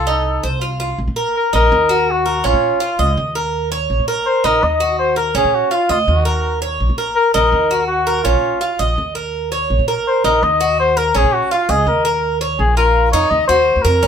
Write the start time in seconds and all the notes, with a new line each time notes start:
Already playing: C2 A4
0.07 D#4
0.43 C2 C5
0.61 F4
0.80 F4
0.98 A#1
1.08 A#2
1.16 A#4
1.36 A#4
1.53 A#1 D#4 A#4
1.72 D#2
1.89 F#4
2.11 F#4
2.26 A#4
2.44 A#1 C#4 F4
2.54 A#2
2.80 F4
2.99 C#2 D#5
3.17 D#2
3.35 A#4
3.72 C#5
3.90 A#1
3.99 A#2
4.08 A#4
4.26 C5
4.44 A#1 D#4 A#4
4.63 D#2 D#5
4.80 F#4
4.99 C5
5.16 A#4
5.35 A#1 C#4 G#4
5.45 A#2
5.55 F#4
5.71 F4
5.89 D2 F4 D#5
6.08 D#2 F#4
6.25 A#4
6.62 C#5
6.80 A#1
6.89 A#2
6.98 A#4
7.16 A#4
7.34 A#1 D#4 A#4
7.52 D#2
7.71 F#4
7.87 F#4
8.07 A#4
8.24 A#1 C#4 F4
8.34 A#2
8.61 F4
8.79 A#1 D#5
8.98 D#2
9.15 A#4
9.52 C#5
9.70 A#1
9.79 A#2
9.88 A#4
10.08 C5
10.24 A#1 D#4 A#4
10.43 D#2 D#5
10.61 F#4
10.79 C5
10.97 A#4
11.15 A#1 C#4 G#4
11.24 A#2
11.34 F#4
11.51 F4
11.69 C#2 G#4 D#5
11.87 D#2 A#4
12.05 A#4
12.41 C#5
12.59 A#1 G#4
12.77 F4 A#4
13.12 F2 D#4 C#5
13.30 D#2 D#5
13.47 D#2 F#4 C5
13.76 D#2
13.82 F2 A#4
14.03 A#1 C#4